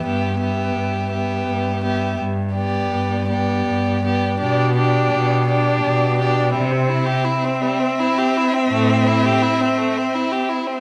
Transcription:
X:1
M:3/4
L:1/16
Q:1/4=84
K:G
V:1 name="Violin"
e2 e4 e4 e2 | z2 d4 d4 d2 | d2 d4 d4 d2 | e12- |
e12 |]
V:2 name="Violin"
G2 G4 G4 G2 | z2 G4 G4 G2 | G2 G4 G4 G2 | G, C E G E C G, C E G E C |
A, C E G E C A, C E G E C |]
V:3 name="Viola"
B,2 B,4 B,4 B,2 | z2 B,4 B,4 B,2 | D2 D4 D4 D2 | C12- |
C12 |]
V:4 name="Cello" clef=bass
G,,4 G,,4 G,,4 | G,,4 G,,4 G,,4 | B,,4 B,,4 B,,4 | C,4 z8 |
A,,4 z8 |]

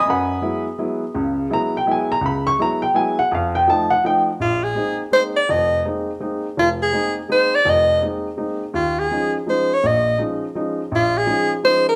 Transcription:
X:1
M:3/4
L:1/8
Q:"Swing" 1/4=166
K:Gb
V:1 name="Soprano saxophone"
z6 | z6 | z6 | z6 |
[K:Eb] F A2 z c d | e2 z4 | F A2 z c d | e2 z4 |
F A2 z c _d | e2 z4 | F A2 z c B |]
V:2 name="Upright piano"
[cgac']3 z3 | z2 b =g a b | c' d' b =g a _g | f =g =a _g =g z |
[K:Eb] z6 | z6 | z6 | z6 |
z6 | z6 | z6 |]
V:3 name="Upright piano"
G,,2 [G,A,C_F] z [G,A,CF] z | [D,,D,]2 [G,A,C_F] z [G,A,CF] z | D,,2 [G,A,C_F] z [G,A,CF] z | F,,2 [F,=A,E] z [F,A,E] z |
[K:Eb] B,,,2 [A,B,CE] z [A,B,CE] z | [F,,,F,,]2 [A,B,CE] z [A,B,CE] z | F,,,2 [A,B,CE] z [A,B,CE] z | [F,,,F,,]2 [A,B,CE] z [A,B,CE] z |
E,,2 [F,A,_DE] z [F,A,DE] z | [B,,,B,,]2 [F,A,_DE] z [F,A,DE] z | B,,,2 [F,A,_DE] z [F,A,DE] z |]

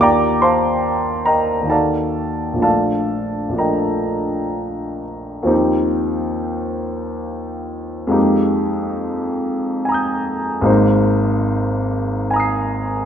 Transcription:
X:1
M:3/4
L:1/8
Q:1/4=70
K:Bb
V:1 name="Grand piano"
[dgbd'] [cfac']2 [Begb] [Adfa]2 | [Adfa]2 [Begb]3 z | [K:Eb] z6 | z4 [abe'g']2 |
z4 [abe'c'']2 |]
V:2 name="Grand piano"
[E,,E,B,FG]4 [E,,E,B,E_G]2 | [B,,,F,A,DF]2 [B,,,F,A,DF]4 | [K:Eb] [E,,F,CEG]6 | [F,,A,B,EG]6 |
[A,,,A,B,Ec]6 |]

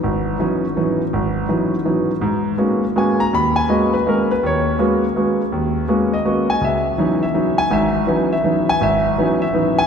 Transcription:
X:1
M:3/4
L:1/8
Q:"Swing" 1/4=164
K:G#m
V:1 name="Grand piano"
z6 | z6 | z4 g a | b g d B A B |
c2 z4 | z3 d2 g | e z2 e2 g | e z2 e2 g |
e z2 e2 g |]
V:2 name="Grand piano"
G,,,2 [E,F,B,CD] z [E,F,B,CD] z | G,,,2 [E,F,B,CD] z [E,F,B,CD] z | G,,2 [G,A,B,CF] z [G,A,B,CF] z | D,,2 [G,A,B,CF] z [G,A,B,CF] z |
D,,2 [G,A,B,CF] z [G,A,B,CF] z | D,,2 [G,A,B,CF] z [G,A,B,CF] z | C,,2 [E,F,B,CD] z [E,F,B,CD] z | [G,,,G,,]2 [E,F,B,CD] z [E,F,B,CD] z |
G,,,2 [E,F,B,CD] z [E,F,B,CD] z |]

